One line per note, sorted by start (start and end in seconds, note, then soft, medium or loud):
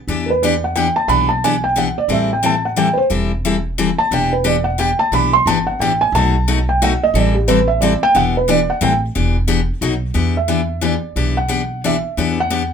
0.08 0.88 E2 medium
0.08 0.29 E3 medium
0.08 0.29 B3 medium
0.08 0.29 D4 medium
0.08 0.29 G4 medium
0.26 0.28 A#4 medium
0.30 0.43 B4 medium
0.43 0.53 E3 medium
0.43 0.54 B3 medium
0.43 0.54 D4 medium
0.43 0.54 G4 loud
0.43 0.62 D5 medium
0.64 0.76 F#5 medium
0.76 0.86 E3 medium
0.76 0.87 B3 medium
0.76 0.87 D4 medium
0.76 0.87 G4 medium
0.76 0.95 G5 medium
0.96 1.09 A5 loud
1.08 1.89 B1 medium
1.08 1.29 E3 medium
1.08 1.29 B3 medium
1.08 1.30 D4 medium
1.08 1.30 G4 medium
1.08 1.28 B5 loud
1.29 1.42 A5 medium
1.44 1.54 E3 medium
1.44 1.54 B3 medium
1.44 1.54 D4 loud
1.44 1.55 G4 loud
1.44 1.63 G#5 medium
1.64 1.76 G5 medium
1.76 1.87 E3 medium
1.76 1.87 B3 medium
1.76 1.88 D4 medium
1.76 1.87 G4 medium
1.76 1.97 F#5 medium
1.98 2.10 D5 medium
2.08 2.90 A1 medium
2.08 2.30 E3 medium
2.08 2.30 G3 medium
2.08 2.30 C4 medium
2.08 2.30 E4 medium
2.08 2.30 A4 medium
2.08 2.31 E5 medium
2.33 2.45 G5 medium
2.43 2.54 E3 medium
2.43 2.54 G3 medium
2.43 2.54 C4 medium
2.43 2.54 E4 medium
2.43 2.54 A4 loud
2.43 2.64 A5 loud
2.65 2.78 F#5 medium
2.76 2.88 E3 medium
2.76 2.87 G3 medium
2.76 2.88 C4 medium
2.76 2.88 E4 medium
2.76 2.88 A4 medium
2.76 2.97 G5 medium
2.93 2.96 B4 medium
2.98 3.06 C5 loud
3.10 3.91 E1 medium
3.10 3.30 E3 medium
3.10 3.31 G3 medium
3.10 3.31 C4 medium
3.10 3.31 E4 medium
3.10 3.31 A4 medium
3.45 3.55 E3 medium
3.45 3.56 G3 medium
3.45 3.55 C4 medium
3.45 3.55 E4 loud
3.45 3.56 A4 medium
3.78 3.89 E3 medium
3.78 3.89 G3 medium
3.78 3.89 C4 medium
3.78 3.89 E4 loud
3.78 3.89 A4 medium
3.98 4.11 A5 loud
4.11 4.92 E1 medium
4.11 4.32 E3 medium
4.11 4.32 B3 medium
4.11 4.32 D4 medium
4.11 4.32 G4 medium
4.11 4.32 G5 medium
4.33 4.45 B4 medium
4.44 4.55 E3 medium
4.44 4.55 B3 medium
4.44 4.56 D4 loud
4.44 4.56 G4 loud
4.44 4.65 D5 medium
4.64 4.78 F#5 medium
4.78 4.89 E3 medium
4.78 4.89 B3 medium
4.78 4.90 D4 medium
4.78 4.90 G4 medium
4.78 4.98 G5 medium
4.99 5.12 A5 loud
5.12 5.39 B1 medium
5.12 5.32 E3 medium
5.12 5.33 B3 medium
5.12 5.33 D4 medium
5.12 5.33 G4 medium
5.12 5.32 B5 medium
5.33 5.46 C6 loud
5.46 5.74 G1 medium
5.46 5.57 E3 medium
5.46 5.57 B3 medium
5.46 5.57 D4 medium
5.46 5.58 G4 medium
5.46 5.66 A5 medium
5.67 5.79 F#5 medium
5.79 6.08 A1 medium
5.79 5.91 E3 medium
5.79 5.91 B3 medium
5.79 5.91 D4 medium
5.79 5.92 G4 medium
5.79 5.99 G5 medium
6.01 6.13 G#5 loud
6.12 6.93 B1 medium
6.12 6.34 B2 medium
6.12 6.34 F#3 medium
6.12 6.34 A3 medium
6.12 6.35 F#4 medium
6.12 6.64 A5 loud
6.16 6.35 D#4 medium
6.48 6.58 B2 medium
6.48 6.58 F#3 medium
6.48 6.58 A3 medium
6.48 6.58 D#4 medium
6.48 6.58 F#4 loud
6.69 6.81 G5 medium
6.82 6.92 B2 medium
6.82 6.92 F#3 medium
6.82 6.92 A3 medium
6.82 6.92 D#4 medium
6.82 6.92 F#4 loud
6.82 7.01 F#5 medium
7.03 7.15 D#5 loud
7.14 7.94 A1 loud
7.14 7.35 E3 medium
7.14 7.35 G3 medium
7.14 7.35 C4 medium
7.14 7.35 E4 medium
7.14 7.35 A4 medium
7.14 7.35 D5 medium
7.34 7.47 G4 medium
7.48 7.59 E3 medium
7.48 7.58 G3 medium
7.48 7.59 C4 loud
7.48 7.58 E4 medium
7.48 7.59 A4 loud
7.48 7.67 B4 medium
7.68 7.81 E5 medium
7.81 7.92 E3 medium
7.81 7.92 G3 loud
7.81 7.93 C4 medium
7.81 7.93 E4 medium
7.81 7.93 A4 loud
7.81 8.00 D5 medium
8.03 8.15 G5 loud
8.15 8.68 E1 medium
8.15 8.35 E3 medium
8.15 8.35 B3 medium
8.15 8.35 D4 medium
8.15 8.35 G4 medium
8.15 8.35 F#5 loud
8.37 8.49 B4 medium
8.48 8.59 E3 medium
8.48 8.59 B3 loud
8.48 8.59 D4 loud
8.48 8.59 G4 loud
8.48 8.68 D5 loud
8.70 8.82 F#5 medium
8.81 9.08 A1 medium
8.81 8.92 E3 medium
8.81 8.92 G3 medium
8.81 8.92 C4 medium
8.81 8.92 E4 medium
8.81 8.93 A4 loud
8.81 8.95 G5 medium
9.15 9.69 E1 medium
9.15 9.36 E3 medium
9.15 9.35 B3 medium
9.15 9.36 D4 medium
9.15 9.36 G4 medium
9.48 9.59 E3 medium
9.48 9.59 B3 loud
9.48 9.59 D4 medium
9.48 9.59 G4 medium
9.81 10.09 B1 medium
9.81 9.93 B2 medium
9.81 9.93 F#3 medium
9.81 9.93 A3 medium
9.81 9.93 D#4 medium
9.81 9.93 F#4 medium
10.14 10.96 E2 medium
10.14 10.35 E3 medium
10.14 10.35 B3 medium
10.14 10.36 D4 medium
10.14 10.36 G4 medium
10.37 10.81 E5 medium
10.48 10.60 E3 medium
10.48 10.60 B3 medium
10.48 10.60 D4 medium
10.48 10.60 G4 medium
10.81 10.93 E3 medium
10.81 10.94 B3 medium
10.81 10.93 D4 medium
10.81 10.94 G4 medium
10.81 11.34 D5 medium
11.16 11.97 B1 medium
11.16 11.37 E3 medium
11.16 11.37 B3 medium
11.16 11.37 D4 medium
11.16 11.37 G4 medium
11.37 11.81 F#5 loud
11.48 11.60 E3 medium
11.48 11.61 B3 medium
11.48 11.61 D4 medium
11.48 11.61 G4 medium
11.84 11.95 E3 medium
11.84 11.95 B3 medium
11.84 11.95 D4 medium
11.84 11.96 G4 loud
11.84 12.35 E5 medium
12.17 12.73 E2 medium
12.17 12.38 E3 medium
12.17 12.38 B3 medium
12.17 12.38 D4 medium
12.17 12.38 G4 medium
12.40 12.73 F#5 loud
12.50 12.62 E3 medium
12.50 12.62 B3 medium
12.50 12.62 D4 medium
12.50 12.62 G4 loud